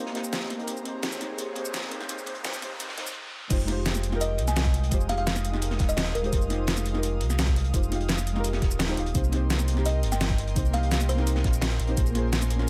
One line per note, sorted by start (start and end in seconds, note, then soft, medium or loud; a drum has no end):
0.00 0.17 C2 loud
0.00 0.65 G4 medium
0.00 0.29 C5 medium
0.00 3.11 C5 medium
0.00 0.64 D#5 medium
0.00 3.11 A#5 medium
0.00 riser medium
0.06 snare soft
0.12 0.31 G1 loud
0.12 0.54 A#3 medium
0.12 0.56 C4 medium
0.12 0.57 D#4 medium
0.12 snare medium
0.12 closed hi-hat medium
0.17 0.58 G4 medium
0.17 0.59 C5 loud
0.24 shaker medium
0.33 snare loud
0.33 closed hi-hat medium
0.33 shaker medium
0.50 snare soft
0.50 closed hi-hat medium
0.56 0.67 C2 loud
0.56 0.65 A#3 medium
0.56 0.66 C4 medium
0.56 0.67 D#4 medium
0.60 0.67 G4 medium
0.60 0.68 A#4 medium
0.60 closed hi-hat soft
0.66 1.58 A#1 loud
0.66 0.74 A#3 medium
0.66 0.75 C4 medium
0.66 0.75 D#4 medium
0.66 0.76 G4 medium
0.66 3.13 G#4 medium
0.66 0.76 C5 medium
0.66 3.13 C#5 medium
0.66 closed hi-hat medium
0.66 shaker soft
0.77 shaker soft
0.82 1.00 A#3 loud
0.82 1.01 C4 medium
0.82 1.02 D#4 medium
0.82 closed hi-hat medium
0.87 1.03 G4 medium
0.87 1.03 C5 loud
1.01 1.09 A#3 medium
1.01 1.10 C4 medium
1.01 1.10 D#4 medium
1.01 1.11 G4 medium
1.01 1.11 C5 medium
1.01 snare loud
1.01 closed hi-hat medium
1.01 shaker medium
1.12 shaker medium
1.17 1.35 A#3 medium
1.17 1.36 C4 medium
1.17 1.37 D#4 medium
1.17 snare soft
1.17 closed hi-hat medium
1.17 shaker soft
1.22 1.38 G4 medium
1.22 1.39 C5 loud
1.37 1.45 A#3 medium
1.37 1.45 C4 medium
1.37 1.46 D#4 medium
1.37 1.46 G4 medium
1.37 1.47 C5 medium
1.37 closed hi-hat medium
1.37 closed hi-hat loud
1.37 shaker soft
1.53 2.08 F1 loud
1.53 1.71 A#3 medium
1.53 1.72 C4 medium
1.53 1.73 D#4 medium
1.53 closed hi-hat medium
1.58 1.73 G4 medium
1.58 1.74 C5 loud
1.65 shaker medium
1.72 1.80 A#3 medium
1.72 1.81 C4 medium
1.72 1.81 D#4 medium
1.72 1.82 G4 medium
1.72 1.82 C5 medium
1.72 snare loud
1.72 closed hi-hat medium
1.72 closed hi-hat loud
1.72 shaker medium
1.88 2.06 A#3 loud
1.88 2.07 C4 medium
1.88 2.08 D#4 medium
1.88 closed hi-hat medium
1.93 2.09 G4 medium
1.93 2.09 C5 loud
2.01 snare medium
2.01 closed hi-hat soft
2.07 2.81 A#1 loud
2.07 2.16 A#3 medium
2.07 2.16 C4 medium
2.07 2.16 D#4 medium
2.07 2.17 G4 medium
2.07 2.17 C5 loud
2.07 closed hi-hat loud
2.07 shaker medium
2.18 shaker soft
2.25 2.33 A#3 medium
2.25 2.34 C4 medium
2.25 2.34 D#4 medium
2.25 2.34 G4 medium
2.25 2.35 C5 loud
2.25 closed hi-hat medium
2.35 closed hi-hat soft
2.43 2.51 A#3 medium
2.43 2.51 C4 medium
2.43 2.52 D#4 medium
2.43 2.52 G4 medium
2.43 2.52 C5 medium
2.43 snare loud
2.43 closed hi-hat loud
2.43 closed hi-hat medium
2.43 shaker medium
2.52 closed hi-hat soft
2.52 shaker medium
2.60 2.69 A#3 medium
2.60 2.69 C4 medium
2.60 2.69 D#4 medium
2.60 2.70 G4 medium
2.60 2.70 C5 medium
2.60 snare soft
2.60 closed hi-hat medium
2.60 shaker soft
2.78 3.15 G#1 loud
2.78 2.86 A#3 medium
2.78 2.87 C4 medium
2.78 2.87 D#4 medium
2.78 2.87 G4 medium
2.78 2.88 C5 loud
2.78 closed hi-hat medium
2.78 closed hi-hat loud
2.78 shaker soft
2.89 snare soft
2.96 3.04 A#3 medium
2.96 3.04 C4 medium
2.96 3.05 D#4 medium
2.96 3.05 G4 medium
2.96 3.06 C5 medium
2.96 snare medium
2.96 closed hi-hat medium
3.07 shaker medium
3.49 4.40 F1 loud
3.49 3.57 G#3 medium
3.49 9.11 G#3 medium
3.49 3.57 D#4 medium
3.49 3.58 F4 medium
3.49 3.58 G4 medium
3.49 3.59 C5 medium
3.49 9.11 F5 medium
3.49 6.30 G5 medium
3.49 9.11 D#6 medium
3.49 kick loud
3.49 closed hi-hat medium
3.49 closed hi-hat loud
3.49 crash loud
3.49 shaker soft
3.60 shaker soft
3.65 4.08 G#3 loud
3.65 4.09 D#4 medium
3.65 4.10 F4 medium
3.65 snare soft
3.65 closed hi-hat medium
3.70 4.11 G4 medium
3.70 4.12 C5 loud
3.86 snare loud
3.86 closed hi-hat medium
3.86 closed hi-hat loud
3.86 shaker soft
3.95 snare medium
3.95 shaker medium
4.03 closed hi-hat medium
4.03 shaker soft
4.09 4.88 G#3 loud
4.09 4.89 D#4 medium
4.09 4.89 F4 medium
4.09 snare soft
4.14 4.90 G4 medium
4.14 4.91 A#4 loud
4.21 4.42 D#5 medium
4.21 closed hi-hat medium
4.21 shaker soft
4.38 4.90 C2 loud
4.38 closed hi-hat medium
4.48 4.69 G#5 medium
4.48 snare soft
4.48 shaker medium
4.56 snare loud
4.56 closed hi-hat medium
4.56 closed hi-hat loud
4.56 shaker soft
4.65 kick loud
4.65 closed hi-hat soft
4.74 closed hi-hat medium
4.83 closed hi-hat soft
4.90 5.78 F1 loud
4.90 4.95 G#3 loud
4.90 4.96 D#4 medium
4.90 4.96 F4 medium
4.90 4.97 G4 medium
4.90 4.97 C5 loud
4.90 kick loud
4.90 closed hi-hat medium
4.90 shaker soft
5.01 shaker soft
5.06 5.49 G#3 medium
5.06 5.50 D#4 medium
5.06 5.51 F4 medium
5.06 5.16 F5 medium
5.06 snare soft
5.06 closed hi-hat medium
5.11 5.52 G4 medium
5.11 5.53 F5 loud
5.17 5.39 F5 medium
5.17 closed hi-hat soft
5.27 snare loud
5.27 closed hi-hat loud
5.27 closed hi-hat medium
5.27 shaker soft
5.36 snare medium
5.36 closed hi-hat soft
5.36 shaker medium
5.44 closed hi-hat medium
5.44 shaker soft
5.50 6.20 G#3 loud
5.50 6.21 D#4 medium
5.50 6.22 F4 loud
5.50 snare soft
5.55 6.23 G4 medium
5.55 6.24 A#4 loud
5.62 closed hi-hat loud
5.62 closed hi-hat medium
5.62 shaker soft
5.71 snare soft
5.79 6.14 D#1 loud
5.79 kick loud
5.79 snare medium
5.79 closed hi-hat medium
5.89 6.10 D#5 medium
5.89 shaker medium
5.97 snare loud
5.97 closed hi-hat medium
5.97 shaker soft
6.15 6.31 D#1 medium
6.15 6.42 A#4 loud
6.15 closed hi-hat medium
6.22 6.30 G#3 medium
6.22 6.30 D#4 medium
6.22 6.31 F4 medium
6.22 6.31 G4 medium
6.22 6.32 C5 loud
6.22 closed hi-hat soft
6.31 7.22 F1 loud
6.31 6.39 G#3 medium
6.31 6.40 D#4 medium
6.31 6.40 F4 medium
6.31 6.40 G4 medium
6.31 6.41 C5 medium
6.31 kick loud
6.31 closed hi-hat medium
6.31 shaker soft
6.42 shaker soft
6.47 6.90 G#3 loud
6.47 6.92 D#4 medium
6.47 6.92 F4 medium
6.47 snare soft
6.47 closed hi-hat medium
6.52 6.93 G4 medium
6.52 6.94 C5 loud
6.67 snare loud
6.67 closed hi-hat medium
6.67 shaker soft
6.77 snare medium
6.77 shaker medium
6.86 closed hi-hat medium
6.86 shaker soft
6.91 7.70 G#3 loud
6.91 7.71 D#4 medium
6.91 7.72 F4 medium
6.91 snare soft
6.96 7.73 G4 medium
6.96 7.74 A#4 loud
7.03 closed hi-hat medium
7.03 shaker soft
7.21 7.72 C2 loud
7.21 closed hi-hat medium
7.30 snare soft
7.30 shaker medium
7.39 snare loud
7.39 closed hi-hat medium
7.39 shaker soft
7.47 kick loud
7.47 closed hi-hat soft
7.56 closed hi-hat medium
7.64 closed hi-hat soft
7.72 8.61 F1 loud
7.72 7.78 G#3 medium
7.72 7.78 D#4 medium
7.72 7.78 F4 medium
7.72 7.79 G4 medium
7.72 7.79 C5 loud
7.72 kick loud
7.72 closed hi-hat medium
7.72 shaker soft
7.83 shaker soft
7.88 8.31 G#3 loud
7.88 8.33 D#4 medium
7.88 8.34 F4 medium
7.88 snare soft
7.88 closed hi-hat medium
7.93 8.34 G4 medium
7.93 8.35 F5 loud
8.01 closed hi-hat soft
8.08 snare loud
8.08 closed hi-hat medium
8.08 shaker soft
8.17 snare medium
8.17 closed hi-hat soft
8.17 shaker medium
8.27 closed hi-hat medium
8.27 shaker soft
8.33 8.85 G#3 loud
8.33 8.86 D#4 medium
8.33 8.87 F4 medium
8.33 snare soft
8.38 8.88 G4 medium
8.38 8.89 A#4 loud
8.44 closed hi-hat medium
8.44 shaker soft
8.53 snare soft
8.62 8.96 D#1 loud
8.62 kick loud
8.62 snare medium
8.62 closed hi-hat medium
8.71 shaker medium
8.79 snare loud
8.79 closed hi-hat medium
8.79 shaker soft
8.87 8.94 G#3 loud
8.87 8.95 D#4 medium
8.87 8.95 F4 medium
8.87 8.96 G4 medium
8.87 8.96 C5 loud
8.96 9.13 D#1 medium
8.96 9.01 G#3 medium
8.96 9.01 D#4 medium
8.96 9.02 F4 medium
8.96 9.02 G4 medium
8.96 9.03 F5 loud
8.96 closed hi-hat medium
9.06 closed hi-hat soft
9.13 10.05 C2 loud
9.13 9.21 A#3 medium
9.13 9.22 C4 medium
9.13 9.22 D#4 medium
9.13 9.23 G4 medium
9.13 12.70 A#4 medium
9.13 9.23 C5 medium
9.13 11.94 D#5 medium
9.13 11.95 G5 medium
9.13 12.70 C6 medium
9.13 kick loud
9.13 closed hi-hat medium
9.13 shaker soft
9.24 shaker soft
9.29 9.72 A#3 loud
9.29 9.74 C4 medium
9.29 9.75 D#4 medium
9.29 snare soft
9.29 closed hi-hat medium
9.34 9.76 G4 medium
9.34 9.76 C5 loud
9.50 snare loud
9.50 closed hi-hat medium
9.50 shaker soft
9.59 snare medium
9.59 shaker medium
9.68 closed hi-hat medium
9.68 shaker soft
9.73 10.52 A#3 medium
9.73 10.53 C4 medium
9.73 10.54 D#4 medium
9.73 snare soft
9.78 10.55 G4 medium
9.78 10.56 A#4 loud
9.86 10.07 D#5 medium
9.86 closed hi-hat medium
9.86 closed hi-hat loud
9.86 shaker soft
10.03 10.55 G1 loud
10.03 closed hi-hat medium
10.12 10.33 G5 medium
10.12 snare soft
10.12 shaker medium
10.21 snare loud
10.21 closed hi-hat medium
10.21 shaker soft
10.30 kick loud
10.30 closed hi-hat soft
10.38 closed hi-hat medium
10.47 closed hi-hat soft
10.54 11.43 C2 loud
10.54 10.60 A#3 loud
10.54 10.60 C4 medium
10.54 10.61 D#4 medium
10.54 10.61 G4 medium
10.54 10.62 C5 loud
10.54 kick loud
10.54 closed hi-hat medium
10.54 shaker medium
10.65 shaker soft
10.70 11.13 A#3 medium
10.70 11.15 C4 medium
10.70 11.16 D#4 medium
10.70 10.81 F5 medium
10.70 snare soft
10.70 closed hi-hat medium
10.75 11.17 G4 medium
10.75 11.18 F5 loud
10.83 closed hi-hat soft
10.91 snare loud
10.91 closed hi-hat medium
10.91 closed hi-hat loud
10.91 shaker medium
11.00 snare medium
11.00 closed hi-hat soft
11.00 shaker medium
11.09 11.59 C5 medium
11.09 closed hi-hat medium
11.09 shaker soft
11.14 11.85 A#3 loud
11.14 11.86 C4 medium
11.14 11.87 D#4 medium
11.14 snare soft
11.20 11.88 G4 loud
11.20 11.89 A#4 loud
11.27 closed hi-hat medium
11.27 shaker medium
11.36 snare soft
11.44 11.78 A#1 loud
11.44 kick loud
11.44 snare medium
11.44 closed hi-hat medium
11.53 shaker medium
11.62 snare loud
11.62 closed hi-hat medium
11.62 closed hi-hat loud
11.62 shaker medium
11.80 11.96 A#1 medium
11.80 closed hi-hat medium
11.87 11.94 A#3 medium
11.87 11.95 C4 medium
11.87 11.95 D#4 medium
11.87 11.96 G4 medium
11.87 11.96 C5 loud
11.87 closed hi-hat soft
11.95 12.70 A#1 loud
11.95 12.04 A#3 medium
11.95 12.04 C#4 medium
11.95 12.70 C#4 medium
11.95 12.05 F4 medium
11.95 12.05 G#4 medium
11.95 12.05 C5 loud
11.95 12.70 G#5 medium
11.95 kick loud
11.95 closed hi-hat medium
11.95 shaker medium
12.06 shaker soft
12.11 12.54 A#3 loud
12.11 12.56 C#4 medium
12.11 12.57 F4 medium
12.11 closed hi-hat medium
12.15 12.58 G#4 medium
12.15 12.59 C5 loud
12.15 snare soft
12.15 closed hi-hat medium
12.33 snare loud
12.33 closed hi-hat medium
12.33 shaker medium
12.42 snare medium
12.42 shaker medium
12.50 closed hi-hat medium
12.50 shaker soft
12.56 12.70 A#3 medium
12.56 12.70 C#4 medium
12.56 12.70 F4 medium
12.56 snare soft
12.61 12.70 G#4 medium
12.61 12.70 A#4 loud